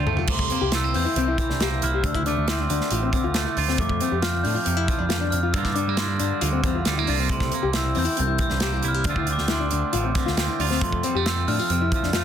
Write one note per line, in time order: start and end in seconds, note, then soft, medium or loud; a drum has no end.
0.00 0.16 D2 medium
0.00 0.28 D2 medium
0.00 0.28 D3 medium
0.00 0.27 C4 medium
0.00 0.29 F4 soft
0.07 0.27 A3 medium
0.07 0.18 A4 medium
0.07 mid tom medium
0.17 0.29 F4 medium
0.17 floor tom medium
0.27 0.49 C2 medium
0.27 0.95 C3 medium
0.27 0.51 A3 medium
0.27 kick loud
0.27 crash loud
0.32 0.76 C6 medium
0.39 kick medium
0.50 1.61 A#3 medium
0.50 0.62 C4 medium
0.50 closed hi-hat medium
0.61 0.92 C2 medium
0.61 0.73 G4 medium
0.72 0.84 A3 medium
0.72 0.94 E4 medium
0.72 0.96 E6 medium
0.72 snare loud
0.72 closed hi-hat medium
0.84 2.04 C4 medium
0.94 1.05 E2 medium
0.94 1.38 E3 medium
0.94 1.05 C4 medium
0.94 1.17 G6 loud
0.94 open hi-hat medium
1.05 1.16 E4 medium
1.16 1.36 C2 medium
1.16 1.39 C3 medium
1.16 1.28 C4 medium
1.16 1.85 G6 loud
1.16 closed hi-hat medium
1.28 1.49 E4 medium
1.38 2.02 E3 medium
1.38 kick medium
1.38 closed hi-hat medium
1.49 1.80 C2 medium
1.49 1.60 D4 medium
1.49 snare soft
1.60 2.02 A#3 medium
1.60 1.72 G4 medium
1.60 snare loud
1.60 closed hi-hat medium
1.72 1.93 E4 medium
1.82 2.03 C2 medium
1.82 2.02 E4 medium
1.82 2.03 F6 medium
1.82 closed hi-hat medium
1.94 2.04 G4 medium
2.04 2.34 D2 medium
2.04 3.79 D2 medium
2.04 2.15 D4 medium
2.04 2.27 E6 loud
2.04 kick loud
2.04 closed hi-hat medium
2.15 2.26 E4 medium
2.15 kick medium
2.26 3.34 A3 medium
2.26 2.48 D4 medium
2.26 2.36 D6 medium
2.26 closed hi-hat medium
2.37 2.68 D2 medium
2.48 3.77 C4 medium
2.48 2.60 E4 medium
2.48 3.32 C6 medium
2.48 snare loud
2.48 closed hi-hat medium
2.60 2.69 D4 medium
2.70 2.80 D2 medium
2.70 3.12 D3 medium
2.70 2.92 D4 medium
2.70 closed hi-hat medium
2.81 snare soft
2.90 3.12 A1 medium
2.90 3.14 A2 medium
2.90 3.03 F4 medium
2.90 closed hi-hat medium
3.03 3.12 C4 medium
3.13 4.45 D3 medium
3.13 3.24 C4 medium
3.13 kick medium
3.13 closed hi-hat medium
3.24 3.45 D2 medium
3.24 3.47 F4 medium
3.34 3.76 A3 medium
3.34 snare loud
3.34 closed hi-hat medium
3.47 3.57 E4 medium
3.57 3.78 D2 loud
3.57 3.68 D4 medium
3.57 5.13 F4 medium
3.57 open hi-hat medium
3.68 3.79 C4 medium
3.68 snare soft
3.78 3.99 F2 medium
3.78 5.10 F2 medium
3.78 4.01 A3 medium
3.78 4.25 D6 medium
3.78 kick loud
3.78 closed hi-hat medium
3.89 kick medium
4.00 5.53 A3 medium
4.00 4.12 C4 medium
4.00 closed hi-hat medium
4.12 4.43 F2 medium
4.12 4.22 G4 medium
4.22 5.53 C4 medium
4.22 4.45 F4 medium
4.22 4.32 F6 loud
4.22 snare loud
4.22 closed hi-hat medium
4.43 4.55 A2 medium
4.43 4.88 F3 medium
4.43 4.55 D4 medium
4.43 4.64 G6 loud
4.43 open hi-hat medium
4.54 4.66 F4 medium
4.65 4.87 F2 medium
4.65 4.89 C3 medium
4.65 4.77 C4 medium
4.65 5.34 G6 loud
4.65 closed hi-hat medium
4.77 4.99 E4 medium
4.88 5.52 F3 medium
4.88 kick medium
4.88 closed hi-hat medium
4.99 5.30 F2 medium
4.99 5.09 D4 medium
5.09 5.33 E2 medium
5.09 5.20 F4 medium
5.09 snare loud
5.09 closed hi-hat medium
5.21 5.43 D4 medium
5.30 5.53 F2 medium
5.30 5.55 F2 medium
5.30 5.54 F6 medium
5.30 closed hi-hat medium
5.43 5.54 F4 medium
5.53 5.85 G2 medium
5.53 7.28 G2 medium
5.53 6.20 D3 medium
5.53 5.77 A#3 medium
5.53 5.65 D4 medium
5.53 5.76 E6 medium
5.53 kick loud
5.53 closed hi-hat medium
5.57 5.99 D4 medium
5.57 7.08 F4 medium
5.65 5.75 E4 medium
5.65 kick medium
5.65 snare soft
5.74 5.89 G3 medium
5.74 5.98 D4 medium
5.74 5.96 D6 medium
5.74 closed hi-hat medium
5.88 6.18 G2 medium
5.88 6.87 A#3 soft
5.97 7.29 D4 medium
5.97 6.08 E4 medium
5.97 6.82 C6 medium
5.97 snare loud
5.97 closed hi-hat medium
6.08 6.18 D4 medium
6.19 6.31 G2 medium
6.19 6.41 D3 medium
6.19 6.41 D4 medium
6.19 closed hi-hat medium
6.41 6.63 D2 medium
6.41 6.64 D3 medium
6.41 6.52 F4 medium
6.41 closed hi-hat medium
6.53 6.63 C4 medium
6.64 6.84 E2 medium
6.64 6.76 C4 medium
6.64 kick medium
6.64 closed hi-hat medium
6.75 6.97 F4 medium
6.85 7.06 D2 medium
6.85 6.99 G3 medium
6.85 snare loud
6.85 closed hi-hat medium
6.98 7.31 A#3 soft
6.98 7.09 E4 medium
7.07 7.28 C2 medium
7.07 7.19 D4 medium
7.07 7.28 F4 medium
7.07 open hi-hat medium
7.19 7.30 C4 medium
7.29 7.50 C2 medium
7.29 7.96 C3 medium
7.29 7.52 A3 medium
7.29 7.72 C6 medium
7.29 kick loud
7.29 closed hi-hat medium
7.40 kick medium
7.40 snare soft
7.51 8.60 A#3 medium
7.51 7.63 C4 medium
7.51 closed hi-hat medium
7.63 7.94 C2 medium
7.63 7.73 G4 medium
7.73 9.09 C4 medium
7.73 7.96 E4 medium
7.73 7.98 E6 medium
7.73 snare loud
7.73 closed hi-hat medium
7.95 8.07 E2 medium
7.95 8.39 E3 medium
7.95 8.05 C4 medium
7.95 8.20 G6 loud
7.95 open hi-hat medium
8.05 8.17 E4 medium
8.17 8.39 C2 medium
8.17 9.04 G2 medium
8.17 8.27 C4 medium
8.17 closed hi-hat medium
8.22 8.88 G6 loud
8.27 8.50 E4 medium
8.38 9.04 E3 medium
8.38 kick medium
8.38 closed hi-hat medium
8.50 8.82 C2 medium
8.50 8.61 D4 medium
8.50 snare soft
8.60 9.03 A#3 medium
8.60 8.73 G4 medium
8.60 snare loud
8.60 closed hi-hat medium
8.73 8.94 E4 medium
8.83 9.04 C2 medium
8.83 9.04 E4 medium
8.83 closed hi-hat medium
8.88 9.09 F6 medium
8.94 9.06 G4 medium
9.04 9.36 D2 medium
9.04 10.83 D2 medium
9.04 9.17 D4 medium
9.04 kick loud
9.04 closed hi-hat medium
9.09 9.72 D3 medium
9.09 9.30 C4 medium
9.09 9.50 D4 medium
9.09 10.60 F4 medium
9.09 9.30 E6 medium
9.16 9.27 E4 medium
9.16 kick medium
9.27 10.37 C4 medium
9.27 9.50 D4 medium
9.27 closed hi-hat medium
9.32 9.51 D6 medium
9.38 9.70 D2 medium
9.38 snare soft
9.48 11.27 D4 medium
9.48 9.60 E4 medium
9.48 snare loud
9.48 closed hi-hat medium
9.53 10.35 C6 medium
9.60 9.70 D4 medium
9.71 9.82 D2 medium
9.71 10.15 D3 medium
9.71 9.94 D4 medium
9.71 closed hi-hat medium
9.93 10.14 A1 medium
9.93 10.17 A2 medium
9.93 10.04 F4 medium
9.93 closed hi-hat medium
10.04 10.14 C4 medium
10.15 11.48 D3 medium
10.15 10.27 C4 medium
10.15 kick medium
10.15 snare soft
10.15 closed hi-hat medium
10.26 10.48 D2 medium
10.26 10.48 F4 medium
10.26 snare soft
10.37 10.80 C4 medium
10.37 snare loud
10.37 closed hi-hat medium
10.48 10.59 E4 medium
10.59 10.80 D2 loud
10.59 10.70 D4 medium
10.59 11.09 F4 medium
10.59 open hi-hat medium
10.70 10.82 C4 medium
10.70 snare soft
10.81 11.02 F2 loud
10.81 12.24 F2 medium
10.81 11.04 A3 medium
10.81 11.27 C6 medium
10.81 kick loud
10.81 closed hi-hat medium
10.93 kick medium
11.03 11.16 G3 medium
11.03 11.15 C4 medium
11.03 closed hi-hat medium
11.15 11.46 F2 medium
11.15 12.15 A3 soft
11.15 11.26 G4 medium
11.26 12.24 C4 medium
11.26 11.48 F4 medium
11.26 11.49 E6 medium
11.26 snare loud
11.26 closed hi-hat medium
11.48 11.58 A2 medium
11.48 11.92 F3 medium
11.48 11.59 D4 medium
11.48 11.58 F6 loud
11.48 open hi-hat medium
11.59 11.70 F4 medium
11.69 11.90 F2 medium
11.69 11.93 C3 medium
11.69 11.81 C4 medium
11.69 12.24 F6 loud
11.69 closed hi-hat medium
11.81 12.03 E4 medium
11.92 12.24 F3 medium
11.92 kick medium
11.92 closed hi-hat medium
12.03 12.24 F2 medium
12.03 12.15 D4 medium
12.03 snare soft
12.13 12.24 A3 medium
12.13 12.24 F4 medium
12.13 snare loud
12.13 closed hi-hat medium